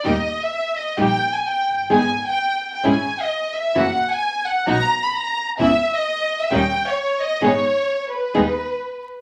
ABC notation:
X:1
M:4/4
L:1/16
Q:1/4=130
K:G#m
V:1 name="Violin section"
d3 e3 d2 =g3 ^g =g3 z | g3 =g4 g ^g3 d3 e2 | f3 g3 f2 a3 b a3 z | e3 d4 e =g3 c3 d2 |
c6 B8 z2 |]
V:2 name="String section"
[A,D=G]2 z6 [A,DG]2 z6 | [B,DG]2 z6 [CEG]2 z6 | [A,EF]2 z6 [B,DF]2 z6 | [B,CE]2 z6 [=G,CD]2 z6 |
[G,B,D]2 z6 [G,B,D]2 z6 |]
V:3 name="Nylon-string guitar"
[D,=G,A,D=G]2 z6 [D,G,A,DG]2 z6 | [D,G,B,DG]2 z6 [G,CE]2 z6 | [C,E,A,CF]2 z6 [B,,F,B,DF]2 z6 | [C,E,B,CE]2 z6 [D,=G,C=G]2 z6 |
[D,G,B,DG]2 z6 [D,G,B,DG]2 z6 |]
V:4 name="Double bass" clef=bass
D,,2 z6 A,,,2 z4 F,,,2 | G,,,2 z6 G,,,2 z6 | F,,,2 z6 B,,,2 z6 | C,,2 z6 D,,2 z6 |
G,,,2 z6 D,,2 z6 |]